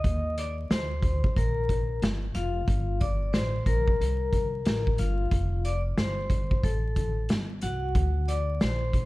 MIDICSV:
0, 0, Header, 1, 5, 480
1, 0, Start_track
1, 0, Tempo, 659341
1, 31, Time_signature, 4, 2, 24, 8
1, 6591, End_track
2, 0, Start_track
2, 0, Title_t, "Vibraphone"
2, 0, Program_c, 0, 11
2, 0, Note_on_c, 0, 75, 93
2, 0, Note_on_c, 0, 87, 83
2, 241, Note_off_c, 0, 75, 0
2, 244, Note_off_c, 0, 87, 0
2, 276, Note_on_c, 0, 74, 90
2, 281, Note_on_c, 0, 86, 73
2, 382, Note_off_c, 0, 74, 0
2, 386, Note_off_c, 0, 86, 0
2, 514, Note_on_c, 0, 72, 79
2, 519, Note_on_c, 0, 84, 58
2, 966, Note_off_c, 0, 84, 0
2, 994, Note_on_c, 0, 70, 68
2, 997, Note_on_c, 0, 82, 56
2, 1007, Note_off_c, 0, 72, 0
2, 1443, Note_off_c, 0, 70, 0
2, 1445, Note_off_c, 0, 82, 0
2, 1709, Note_on_c, 0, 77, 95
2, 1716, Note_on_c, 0, 65, 75
2, 2164, Note_off_c, 0, 65, 0
2, 2189, Note_on_c, 0, 74, 86
2, 2196, Note_on_c, 0, 86, 69
2, 2204, Note_off_c, 0, 77, 0
2, 2417, Note_off_c, 0, 86, 0
2, 2425, Note_on_c, 0, 72, 87
2, 2432, Note_on_c, 0, 84, 60
2, 2437, Note_off_c, 0, 74, 0
2, 2654, Note_off_c, 0, 84, 0
2, 2669, Note_on_c, 0, 70, 87
2, 2673, Note_on_c, 0, 82, 64
2, 2675, Note_off_c, 0, 72, 0
2, 3603, Note_off_c, 0, 82, 0
2, 3631, Note_on_c, 0, 77, 86
2, 3635, Note_on_c, 0, 65, 70
2, 3659, Note_off_c, 0, 70, 0
2, 4084, Note_off_c, 0, 65, 0
2, 4110, Note_on_c, 0, 74, 85
2, 4114, Note_on_c, 0, 86, 65
2, 4125, Note_off_c, 0, 77, 0
2, 4219, Note_off_c, 0, 74, 0
2, 4222, Note_off_c, 0, 86, 0
2, 4352, Note_on_c, 0, 72, 79
2, 4355, Note_on_c, 0, 84, 60
2, 4804, Note_off_c, 0, 84, 0
2, 4834, Note_on_c, 0, 69, 72
2, 4835, Note_on_c, 0, 81, 52
2, 4846, Note_off_c, 0, 72, 0
2, 5283, Note_off_c, 0, 69, 0
2, 5284, Note_off_c, 0, 81, 0
2, 5551, Note_on_c, 0, 66, 83
2, 5551, Note_on_c, 0, 78, 95
2, 6002, Note_off_c, 0, 66, 0
2, 6029, Note_on_c, 0, 74, 91
2, 6031, Note_on_c, 0, 86, 66
2, 6045, Note_off_c, 0, 78, 0
2, 6254, Note_off_c, 0, 86, 0
2, 6269, Note_on_c, 0, 72, 85
2, 6271, Note_on_c, 0, 84, 60
2, 6277, Note_off_c, 0, 74, 0
2, 6591, Note_off_c, 0, 72, 0
2, 6591, Note_off_c, 0, 84, 0
2, 6591, End_track
3, 0, Start_track
3, 0, Title_t, "Upright bass"
3, 0, Program_c, 1, 32
3, 31, Note_on_c, 1, 39, 113
3, 487, Note_off_c, 1, 39, 0
3, 513, Note_on_c, 1, 38, 93
3, 880, Note_off_c, 1, 38, 0
3, 994, Note_on_c, 1, 34, 77
3, 1449, Note_off_c, 1, 34, 0
3, 1472, Note_on_c, 1, 31, 80
3, 1700, Note_off_c, 1, 31, 0
3, 1712, Note_on_c, 1, 29, 81
3, 1940, Note_off_c, 1, 29, 0
3, 1949, Note_on_c, 1, 31, 100
3, 2406, Note_off_c, 1, 31, 0
3, 2433, Note_on_c, 1, 33, 87
3, 2660, Note_off_c, 1, 33, 0
3, 2666, Note_on_c, 1, 34, 78
3, 2896, Note_off_c, 1, 34, 0
3, 2917, Note_on_c, 1, 36, 81
3, 3370, Note_off_c, 1, 36, 0
3, 3396, Note_on_c, 1, 33, 85
3, 3621, Note_off_c, 1, 33, 0
3, 3633, Note_on_c, 1, 31, 90
3, 3860, Note_off_c, 1, 31, 0
3, 3870, Note_on_c, 1, 29, 96
3, 4326, Note_off_c, 1, 29, 0
3, 4352, Note_on_c, 1, 31, 87
3, 4720, Note_off_c, 1, 31, 0
3, 4831, Note_on_c, 1, 33, 74
3, 5287, Note_off_c, 1, 33, 0
3, 5314, Note_on_c, 1, 31, 87
3, 5540, Note_off_c, 1, 31, 0
3, 5552, Note_on_c, 1, 36, 82
3, 5780, Note_off_c, 1, 36, 0
3, 5789, Note_on_c, 1, 38, 99
3, 6246, Note_off_c, 1, 38, 0
3, 6272, Note_on_c, 1, 34, 82
3, 6591, Note_off_c, 1, 34, 0
3, 6591, End_track
4, 0, Start_track
4, 0, Title_t, "Muted upright bass strokes"
4, 904, Note_on_c, 9, 29, 46
4, 977, Note_off_c, 9, 29, 0
4, 4742, Note_on_c, 9, 29, 41
4, 4814, Note_off_c, 9, 29, 0
4, 6591, End_track
5, 0, Start_track
5, 0, Title_t, "Drums"
5, 31, Note_on_c, 9, 36, 97
5, 32, Note_on_c, 9, 42, 85
5, 103, Note_off_c, 9, 36, 0
5, 105, Note_off_c, 9, 42, 0
5, 274, Note_on_c, 9, 42, 78
5, 346, Note_off_c, 9, 42, 0
5, 515, Note_on_c, 9, 38, 102
5, 518, Note_on_c, 9, 42, 83
5, 588, Note_off_c, 9, 38, 0
5, 591, Note_off_c, 9, 42, 0
5, 747, Note_on_c, 9, 36, 86
5, 751, Note_on_c, 9, 42, 70
5, 820, Note_off_c, 9, 36, 0
5, 824, Note_off_c, 9, 42, 0
5, 903, Note_on_c, 9, 36, 95
5, 976, Note_off_c, 9, 36, 0
5, 994, Note_on_c, 9, 36, 87
5, 1002, Note_on_c, 9, 42, 74
5, 1067, Note_off_c, 9, 36, 0
5, 1075, Note_off_c, 9, 42, 0
5, 1231, Note_on_c, 9, 36, 73
5, 1236, Note_on_c, 9, 42, 65
5, 1304, Note_off_c, 9, 36, 0
5, 1309, Note_off_c, 9, 42, 0
5, 1472, Note_on_c, 9, 42, 84
5, 1481, Note_on_c, 9, 38, 118
5, 1545, Note_off_c, 9, 42, 0
5, 1554, Note_off_c, 9, 38, 0
5, 1708, Note_on_c, 9, 42, 70
5, 1781, Note_off_c, 9, 42, 0
5, 1949, Note_on_c, 9, 36, 97
5, 1950, Note_on_c, 9, 42, 84
5, 2022, Note_off_c, 9, 36, 0
5, 2023, Note_off_c, 9, 42, 0
5, 2191, Note_on_c, 9, 42, 68
5, 2193, Note_on_c, 9, 36, 91
5, 2264, Note_off_c, 9, 42, 0
5, 2266, Note_off_c, 9, 36, 0
5, 2430, Note_on_c, 9, 38, 109
5, 2432, Note_on_c, 9, 42, 75
5, 2502, Note_off_c, 9, 38, 0
5, 2505, Note_off_c, 9, 42, 0
5, 2665, Note_on_c, 9, 36, 83
5, 2667, Note_on_c, 9, 42, 73
5, 2738, Note_off_c, 9, 36, 0
5, 2740, Note_off_c, 9, 42, 0
5, 2821, Note_on_c, 9, 36, 88
5, 2893, Note_off_c, 9, 36, 0
5, 2922, Note_on_c, 9, 42, 78
5, 2995, Note_off_c, 9, 42, 0
5, 3150, Note_on_c, 9, 36, 76
5, 3152, Note_on_c, 9, 42, 62
5, 3222, Note_off_c, 9, 36, 0
5, 3225, Note_off_c, 9, 42, 0
5, 3389, Note_on_c, 9, 42, 81
5, 3398, Note_on_c, 9, 38, 114
5, 3462, Note_off_c, 9, 42, 0
5, 3471, Note_off_c, 9, 38, 0
5, 3546, Note_on_c, 9, 36, 80
5, 3618, Note_off_c, 9, 36, 0
5, 3627, Note_on_c, 9, 42, 67
5, 3700, Note_off_c, 9, 42, 0
5, 3868, Note_on_c, 9, 36, 104
5, 3869, Note_on_c, 9, 42, 85
5, 3941, Note_off_c, 9, 36, 0
5, 3942, Note_off_c, 9, 42, 0
5, 4111, Note_on_c, 9, 42, 66
5, 4184, Note_off_c, 9, 42, 0
5, 4350, Note_on_c, 9, 38, 107
5, 4353, Note_on_c, 9, 42, 74
5, 4423, Note_off_c, 9, 38, 0
5, 4426, Note_off_c, 9, 42, 0
5, 4585, Note_on_c, 9, 36, 85
5, 4589, Note_on_c, 9, 42, 75
5, 4658, Note_off_c, 9, 36, 0
5, 4662, Note_off_c, 9, 42, 0
5, 4740, Note_on_c, 9, 36, 88
5, 4813, Note_off_c, 9, 36, 0
5, 4831, Note_on_c, 9, 36, 88
5, 4837, Note_on_c, 9, 42, 77
5, 4903, Note_off_c, 9, 36, 0
5, 4910, Note_off_c, 9, 42, 0
5, 5069, Note_on_c, 9, 36, 83
5, 5070, Note_on_c, 9, 42, 67
5, 5141, Note_off_c, 9, 36, 0
5, 5143, Note_off_c, 9, 42, 0
5, 5306, Note_on_c, 9, 42, 83
5, 5315, Note_on_c, 9, 38, 105
5, 5379, Note_off_c, 9, 42, 0
5, 5388, Note_off_c, 9, 38, 0
5, 5543, Note_on_c, 9, 42, 68
5, 5616, Note_off_c, 9, 42, 0
5, 5788, Note_on_c, 9, 36, 97
5, 5789, Note_on_c, 9, 42, 89
5, 5861, Note_off_c, 9, 36, 0
5, 5861, Note_off_c, 9, 42, 0
5, 6032, Note_on_c, 9, 42, 69
5, 6104, Note_off_c, 9, 42, 0
5, 6268, Note_on_c, 9, 38, 108
5, 6271, Note_on_c, 9, 42, 83
5, 6341, Note_off_c, 9, 38, 0
5, 6343, Note_off_c, 9, 42, 0
5, 6504, Note_on_c, 9, 36, 79
5, 6508, Note_on_c, 9, 42, 79
5, 6576, Note_off_c, 9, 36, 0
5, 6581, Note_off_c, 9, 42, 0
5, 6591, End_track
0, 0, End_of_file